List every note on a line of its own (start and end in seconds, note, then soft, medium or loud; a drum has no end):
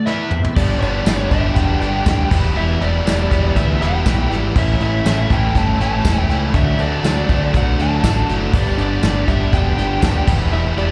0.06 0.29 E3 loud
0.06 0.56 E3 medium
0.06 0.30 B3 medium
0.06 0.56 B3 medium
0.06 0.30 E4 loud
0.06 0.42 B4 medium
0.06 0.41 E5 medium
0.06 snare medium
0.27 0.47 C4 medium
0.27 0.48 D4 medium
0.31 0.54 E3 medium
0.31 0.54 B3 medium
0.31 0.50 E4 medium
0.31 0.51 F4 medium
0.31 mid tom medium
0.37 0.53 G4 medium
0.37 0.54 A4 medium
0.43 0.55 B4 medium
0.43 0.57 C5 medium
0.43 floor tom medium
0.49 0.58 D5 medium
0.49 0.60 E5 medium
0.54 0.76 G1 medium
0.54 0.81 G2 medium
0.54 0.81 D3 medium
0.54 0.82 G3 loud
0.54 2.30 G3 medium
0.54 0.82 B3 loud
0.54 2.30 D4 medium
0.54 0.82 D4 loud
0.54 2.30 B4 medium
0.54 0.79 D5 medium
0.54 0.61 F5 medium
0.54 kick loud
0.54 crash loud
0.80 1.01 G1 medium
0.80 1.04 G2 medium
0.80 1.05 D3 medium
0.80 1.06 G3 medium
0.80 1.07 B3 medium
0.80 1.06 D4 medium
0.80 1.18 D5 medium
0.80 closed hi-hat medium
1.06 1.25 G1 medium
1.06 1.29 G2 loud
1.06 1.30 D3 loud
1.06 1.31 G3 loud
1.06 1.31 B3 loud
1.06 1.31 D4 loud
1.06 snare loud
1.06 closed hi-hat loud
1.06 tambourine loud
1.18 1.32 C#5 medium
1.30 1.51 G1 medium
1.30 1.55 G2 medium
1.30 1.55 D3 medium
1.30 1.56 G3 medium
1.30 1.56 B3 medium
1.30 1.56 D4 loud
1.30 1.55 E5 medium
1.30 kick medium
1.30 closed hi-hat medium
1.55 1.76 E1 medium
1.55 1.79 G2 medium
1.55 1.80 D3 loud
1.55 1.80 G3 medium
1.55 1.81 B3 loud
1.55 1.81 D4 loud
1.55 1.79 G5 loud
1.55 kick medium
1.55 closed hi-hat loud
1.80 2.01 G1 medium
1.80 2.04 G2 medium
1.80 2.05 D3 medium
1.80 2.06 G3 loud
1.80 2.05 B3 medium
1.80 2.06 D4 loud
1.80 2.27 G5 loud
1.80 snare soft
1.80 closed hi-hat medium
2.06 2.25 D#2 loud
2.06 2.29 G2 loud
2.06 2.30 D3 loud
2.06 2.29 G3 loud
2.06 2.29 B3 loud
2.06 2.30 D4 loud
2.06 kick medium
2.06 snare loud
2.06 closed hi-hat loud
2.06 tambourine loud
2.30 2.51 E1 medium
2.30 2.55 E3 medium
2.30 2.55 G3 loud
2.30 4.53 G3 medium
2.30 2.55 B3 loud
2.30 4.53 E4 medium
2.30 2.56 E4 loud
2.30 4.54 B4 medium
2.30 kick loud
2.30 snare soft
2.30 crash loud
2.56 2.75 E1 medium
2.56 2.80 E3 medium
2.56 2.80 G3 medium
2.56 2.81 B3 loud
2.56 2.82 E4 loud
2.56 2.82 E5 medium
2.81 3.00 E1 medium
2.81 3.05 E3 medium
2.81 3.05 G3 medium
2.81 3.05 B3 medium
2.81 3.06 E4 loud
2.81 3.59 D5 medium
2.81 closed hi-hat medium
3.05 3.25 E1 medium
3.05 3.30 E3 loud
3.05 3.30 G3 loud
3.05 3.30 B3 loud
3.05 3.31 E4 loud
3.05 snare loud
3.05 closed hi-hat loud
3.05 tambourine loud
3.30 3.51 E1 medium
3.30 3.54 E3 medium
3.30 3.54 G3 medium
3.30 3.54 B3 medium
3.30 3.55 E4 medium
3.30 kick medium
3.30 closed hi-hat medium
3.55 3.76 D2 medium
3.55 3.79 E3 loud
3.55 3.79 G3 medium
3.55 3.80 B3 medium
3.55 3.80 E4 loud
3.55 3.82 E5 medium
3.55 kick medium
3.55 closed hi-hat loud
3.80 4.00 E1 medium
3.80 4.03 E3 medium
3.80 4.04 G3 medium
3.80 4.04 B3 medium
3.80 4.05 E4 medium
3.80 4.28 G5 loud
3.80 snare soft
3.80 closed hi-hat medium
4.05 4.25 B1 loud
4.05 4.29 E3 loud
4.05 4.29 G3 medium
4.05 4.29 B3 loud
4.05 4.30 E4 loud
4.05 kick medium
4.05 snare loud
4.05 closed hi-hat loud
4.05 tambourine loud
4.30 4.50 G#1 medium
4.30 4.54 E3 medium
4.30 4.54 G3 medium
4.30 4.54 B3 medium
4.30 4.54 E4 loud
4.30 snare soft
4.30 closed hi-hat medium
4.55 4.75 A1 loud
4.55 4.79 A2 medium
4.55 4.79 E3 medium
4.55 4.81 A3 medium
4.55 4.73 A#3 medium
4.55 4.80 C#4 loud
4.55 4.80 E4 loud
4.55 4.73 F4 medium
4.55 4.72 D5 medium
4.55 4.82 E5 medium
4.55 kick loud
4.55 crash loud
4.72 6.53 A3 medium
4.72 6.53 E4 medium
4.72 6.53 C#5 medium
4.80 5.00 A1 medium
4.80 5.04 A2 medium
4.80 5.05 E3 medium
4.80 5.05 A3 medium
4.80 5.05 C#4 medium
4.80 5.05 E4 medium
4.80 5.33 E5 medium
4.80 closed hi-hat medium
5.05 5.25 A1 medium
5.05 5.29 A2 loud
5.05 5.29 E3 loud
5.05 5.30 A3 loud
5.05 5.30 C#4 loud
5.05 5.30 E4 loud
5.05 snare loud
5.05 closed hi-hat loud
5.05 tambourine loud
5.30 5.50 A1 medium
5.30 5.54 A2 medium
5.30 5.54 E3 loud
5.30 5.54 A3 medium
5.30 5.55 C#4 medium
5.30 5.55 E4 medium
5.30 5.57 G5 loud
5.30 kick medium
5.30 closed hi-hat medium
5.55 5.75 G1 medium
5.55 5.78 A2 loud
5.55 5.79 E3 loud
5.55 5.79 A3 loud
5.55 5.80 C#4 loud
5.55 5.80 E4 loud
5.55 5.81 A5 loud
5.55 kick medium
5.55 closed hi-hat medium
5.80 5.99 A1 medium
5.80 6.04 A2 medium
5.80 6.04 E3 medium
5.80 6.05 A3 loud
5.80 6.05 C#4 medium
5.80 6.06 E4 medium
5.80 6.28 A5 loud
5.80 snare soft
5.80 closed hi-hat medium
6.05 6.24 E1 loud
6.05 6.28 A2 medium
6.05 6.29 E3 loud
6.05 6.29 A3 loud
6.05 6.29 C#4 loud
6.05 6.29 E4 loud
6.05 kick medium
6.05 snare loud
6.05 closed hi-hat loud
6.05 tambourine loud
6.29 6.49 C#2 medium
6.29 6.53 A2 medium
6.29 6.53 E3 medium
6.29 6.53 A3 medium
6.29 6.54 C#4 medium
6.29 6.54 E4 loud
6.29 snare soft
6.29 closed hi-hat medium
6.53 6.74 D2 loud
6.53 6.77 D3 medium
6.53 6.78 F#3 loud
6.53 6.78 A3 loud
6.53 8.52 A3 medium
6.53 6.79 D4 loud
6.53 8.52 F#4 medium
6.53 8.52 D5 medium
6.53 6.81 E5 medium
6.53 kick loud
6.53 closed hi-hat loud
6.78 6.99 D2 medium
6.78 7.03 D3 medium
6.78 7.03 F#3 loud
6.78 7.03 A3 medium
6.78 7.04 D4 loud
6.78 7.57 D5 medium
6.78 closed hi-hat medium
7.03 7.23 D2 medium
7.03 7.27 D3 loud
7.03 7.28 F#3 loud
7.03 7.28 A3 loud
7.03 7.29 D4 loud
7.03 snare loud
7.03 closed hi-hat loud
7.03 tambourine loud
7.28 7.49 D2 loud
7.28 7.53 D3 medium
7.28 7.54 F#3 medium
7.28 7.54 A3 loud
7.28 7.54 D4 medium
7.28 kick medium
7.28 closed hi-hat medium
7.54 7.74 B1 medium
7.54 7.78 D3 loud
7.54 7.78 F#3 loud
7.54 7.78 A3 loud
7.54 7.79 D4 loud
7.54 7.81 F#5 loud
7.54 kick medium
7.54 closed hi-hat loud
7.79 7.98 D2 medium
7.79 8.02 D3 medium
7.79 8.02 F#3 medium
7.79 8.03 A3 loud
7.79 8.03 D4 loud
7.79 8.27 A5 loud
7.79 snare soft
7.79 closed hi-hat medium
8.03 8.23 A1 loud
8.03 8.27 D3 loud
8.03 8.28 F#3 loud
8.03 8.28 A3 loud
8.03 8.28 D4 loud
8.03 kick medium
8.03 snare loud
8.03 closed hi-hat loud
8.03 tambourine loud
8.29 8.48 F#1 medium
8.29 8.52 D3 medium
8.29 8.52 F#3 medium
8.29 8.52 A3 medium
8.29 8.52 D4 medium
8.29 snare soft
8.29 closed hi-hat medium
8.53 8.73 G1 loud
8.53 8.77 G2 loud
8.53 8.77 D3 loud
8.53 8.78 G3 loud
8.53 8.78 B3 loud
8.53 10.26 B3 medium
8.53 8.78 D4 medium
8.53 10.27 G4 medium
8.53 10.27 D5 medium
8.53 8.78 D5 medium
8.53 kick loud
8.53 crash loud
8.78 8.98 G1 medium
8.78 9.02 G2 medium
8.78 9.03 D3 medium
8.78 9.03 G3 medium
8.78 9.04 B3 medium
8.78 9.03 D4 medium
8.78 9.31 D5 medium
8.78 closed hi-hat medium
9.03 9.22 G1 medium
9.03 9.27 G2 loud
9.03 9.27 D3 loud
9.03 9.29 G3 loud
9.03 9.29 B3 loud
9.03 9.28 D4 loud
9.03 snare loud
9.03 closed hi-hat loud
9.03 tambourine loud
9.28 9.48 G1 medium
9.28 9.52 G2 medium
9.28 9.52 D3 medium
9.28 9.52 G3 medium
9.28 9.53 B3 medium
9.28 9.53 D4 medium
9.28 9.54 E5 medium
9.28 kick medium
9.28 closed hi-hat medium
9.53 9.73 E1 loud
9.53 9.77 G2 medium
9.53 9.77 D3 loud
9.53 9.77 G3 loud
9.53 9.78 B3 loud
9.53 9.78 D4 loud
9.53 9.76 G5 loud
9.53 kick medium
9.53 closed hi-hat medium
9.78 9.97 G1 medium
9.78 10.01 G2 medium
9.78 10.02 D3 medium
9.78 10.02 G3 loud
9.78 10.03 B3 medium
9.78 10.03 D4 medium
9.78 10.24 G5 loud
9.78 snare soft
9.78 closed hi-hat medium
10.02 10.22 D#2 loud
10.02 10.26 G2 medium
10.02 10.26 D3 loud
10.02 10.26 G3 loud
10.02 10.27 B3 loud
10.02 10.27 D4 loud
10.02 kick medium
10.02 snare loud
10.02 closed hi-hat loud
10.02 tambourine loud
10.27 10.47 E1 medium
10.27 10.52 E3 medium
10.27 10.51 G3 medium
10.27 10.91 B3 medium
10.27 10.52 B3 loud
10.27 10.53 E4 loud
10.27 10.91 G4 medium
10.27 10.91 E5 medium
10.27 kick loud
10.27 crash loud
10.52 10.72 E1 medium
10.52 10.77 E3 loud
10.52 10.76 G3 loud
10.52 10.77 B3 medium
10.52 10.78 E4 loud
10.52 10.60 E5 medium
10.77 10.91 E1 medium
10.77 10.91 E3 medium
10.77 10.91 G3 medium
10.77 10.91 B3 loud
10.77 10.91 E4 loud
10.77 10.91 D5 medium
10.77 closed hi-hat medium